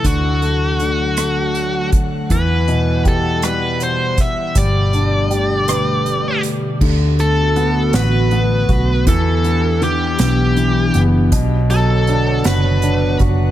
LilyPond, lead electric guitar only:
\new Staff \with { instrumentName = "Lead electric guitar" } { \time 6/8 \key g \lydian \tempo 4. = 53 fis'2~ fis'8 r8 | b'4 a'8 b'8 c''8 e''8 | d''2~ d''8 r8 | \key d \major r8 a'4 b'4. |
a'4 g'8 g'4 r8 | r8 a'4 b'4 r8 | }